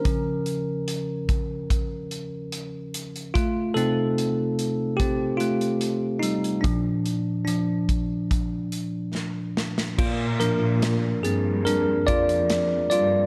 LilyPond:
<<
  \new Staff \with { instrumentName = "Tine electric piano" } { \time 4/4 \key bes \mixolydian \tempo 4 = 73 bes'4. r2 r8 | <a f'>8 <c' a'>4. <c' g'>8 <a f'>4 <g ees'>8 | d'4 <f d'>2~ <f d'>8 r8 | <bes f'>8 bes'4 <c' aes'>8 <d' bes'>8 <f' d''>4 <f' d''>8 | }
  \new Staff \with { instrumentName = "Tine electric piano" } { \clef bass \time 4/4 \key bes \mixolydian <des f des'>4. r2 r8 | r8 <c a ees'>2.~ <c a ees'>8 | <bes, f d'>4. r2 r8 | r8 <f bes d'>4. r2 | }
  \new Staff \with { instrumentName = "Cello section" } { \clef bass \time 4/4 \key bes \mixolydian r1 | r1 | r1 | bes,8. bes,8. g,4 f,4 g,8 | }
  \new DrumStaff \with { instrumentName = "Drums" } \drummode { \time 4/4 <hh bd>8 hh8 hh8 <hh bd>8 <hh bd>8 hh8 hh8 hh16 hh16 | <hh bd>8 hh8 hh8 hh8 <hh bd>8 hh16 hh16 hh8 hh16 hh16 | <hh bd>8 hh8 hh8 <hh bd>8 <hh bd>8 hh8 sn8 sn16 sn16 | <cymc bd>8 hh8 <hh sn>8 hh8 hh8 <hh bd>16 hh16 <hh sn>8 hh8 | }
>>